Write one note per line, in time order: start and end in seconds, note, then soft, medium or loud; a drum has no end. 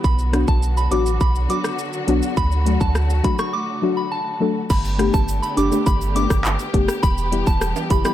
0.00 2.33 B3 medium
0.04 0.44 B1 loud
0.04 4.66 D3 medium
0.04 4.66 F#3 medium
0.04 4.66 F#4 loud
0.04 0.17 B5 medium
0.04 kick loud
0.04 shaker medium
0.19 shaker medium
0.32 0.45 F#3 medium
0.32 0.45 B3 medium
0.32 0.45 D4 medium
0.32 0.45 F#4 medium
0.32 cross-stick medium
0.32 closed hi-hat medium
0.32 shaker medium
0.48 0.88 B1 loud
0.48 0.61 A5 medium
0.48 kick medium
0.48 shaker medium
0.63 shaker medium
0.77 0.90 B5 medium
0.77 shaker medium
0.91 1.18 A1 loud
0.91 1.03 F#3 medium
0.91 1.03 B3 medium
0.91 1.03 D4 medium
0.91 1.03 F#4 medium
0.91 1.05 D6 medium
0.91 closed hi-hat medium
0.91 shaker soft
1.06 shaker medium
1.21 1.48 B1 loud
1.21 1.34 B5 medium
1.21 kick loud
1.21 shaker medium
1.35 shaker soft
1.49 1.61 F#3 medium
1.49 1.61 B3 medium
1.49 1.61 D4 medium
1.49 1.62 F#4 medium
1.49 1.63 D6 medium
1.49 closed hi-hat medium
1.49 shaker medium
1.64 cross-stick medium
1.64 shaker medium
1.79 shaker medium
1.93 shaker medium
2.07 2.21 B1 medium
2.07 2.19 F#3 medium
2.07 2.19 B3 medium
2.07 2.20 D4 medium
2.07 2.20 F#4 loud
2.07 closed hi-hat medium
2.07 shaker soft
2.23 shaker medium
2.37 2.77 D2 loud
2.37 4.68 A3 medium
2.37 2.63 B5 loud
2.37 kick loud
2.37 shaker medium
2.52 shaker medium
2.65 2.77 F#3 medium
2.65 2.78 A3 medium
2.65 2.78 D4 medium
2.65 2.78 F#4 medium
2.65 closed hi-hat medium
2.65 shaker medium
2.80 3.21 D2 medium
2.80 2.94 A5 medium
2.80 kick medium
2.80 shaker medium
2.95 cross-stick medium
2.95 shaker medium
3.10 shaker medium
3.23 3.36 F#3 medium
3.23 3.36 A3 medium
3.23 3.36 D4 medium
3.23 3.36 F#4 medium
3.23 3.38 B5 medium
3.23 kick medium
3.23 closed hi-hat medium
3.23 shaker medium
3.39 3.52 C#6 medium
3.39 cross-stick medium
3.39 shaker medium
3.53 3.67 D6 medium
3.82 3.94 F#3 medium
3.82 3.94 A3 medium
3.82 3.95 D4 medium
3.82 3.95 F#4 medium
3.97 4.10 B5 medium
4.12 4.53 A5 medium
4.40 4.52 F#3 medium
4.40 4.52 A3 medium
4.40 4.53 D4 medium
4.40 4.53 A4 medium
4.70 5.10 G1 loud
4.70 7.01 D3 medium
4.70 7.01 A3 medium
4.70 8.14 B3 medium
4.70 8.14 G4 medium
4.70 4.83 B5 medium
4.70 kick loud
4.70 crash medium
4.70 shaker medium
4.85 shaker medium
4.85 shaker soft
4.98 5.10 A3 medium
4.98 5.11 B3 medium
4.98 5.11 D4 medium
4.98 5.11 G4 medium
4.98 cross-stick medium
4.98 closed hi-hat medium
4.98 shaker medium
5.14 5.41 G1 medium
5.14 5.27 A5 medium
5.14 kick loud
5.14 shaker medium
5.28 shaker medium
5.42 5.56 B5 medium
5.42 shaker medium
5.57 5.71 F#1 loud
5.57 5.63 D4 medium
5.57 5.64 G4 medium
5.57 5.70 D6 medium
5.57 closed hi-hat medium
5.57 shaker soft
5.57 shaker medium
5.72 5.83 A3 medium
5.72 5.84 B3 medium
5.72 5.84 D4 medium
5.72 5.84 G4 medium
5.72 shaker medium
5.86 6.27 G1 medium
5.86 5.99 B5 medium
5.86 kick loud
5.86 shaker medium
6.01 shaker soft
6.01 shaker medium
6.15 6.27 A3 medium
6.15 6.27 B3 medium
6.15 6.28 D4 medium
6.15 6.28 G4 medium
6.15 6.29 D6 medium
6.15 closed hi-hat medium
6.15 shaker soft
6.30 6.57 G1 loud
6.30 kick medium
6.30 cross-stick medium
6.30 shaker medium
6.45 clap loud
6.45 shaker medium
6.59 shaker medium
6.73 6.87 F#1 medium
6.73 6.85 A3 medium
6.73 6.86 B3 medium
6.73 6.86 D4 medium
6.73 6.86 G4 loud
6.73 kick medium
6.73 closed hi-hat medium
6.73 shaker medium
6.88 cross-stick medium
6.88 shaker medium
7.03 7.43 E1 loud
7.03 8.14 E3 medium
7.03 8.14 G3 medium
7.03 7.29 B5 loud
7.03 kick loud
7.03 shaker medium
7.18 shaker soft
7.18 shaker medium
7.32 7.44 G3 medium
7.32 7.44 B3 medium
7.32 7.44 E4 medium
7.32 7.44 G4 medium
7.32 closed hi-hat medium
7.32 shaker medium
7.47 7.74 E1 loud
7.47 7.60 A5 medium
7.47 kick medium
7.47 shaker medium
7.61 cross-stick medium
7.61 shaker medium
7.76 high timbale medium
7.76 shaker soft
7.76 shaker medium
7.90 8.04 F#1 medium
7.90 7.96 E4 medium
7.90 7.97 G4 medium
7.90 8.04 B5 medium
7.90 kick loud
7.90 closed hi-hat medium
7.90 shaker soft
7.90 shaker medium
8.05 8.14 G3 medium
8.05 8.14 B3 medium
8.05 8.14 E4 medium
8.05 8.14 G4 medium
8.05 8.14 B5 medium
8.05 cross-stick loud
8.05 shaker medium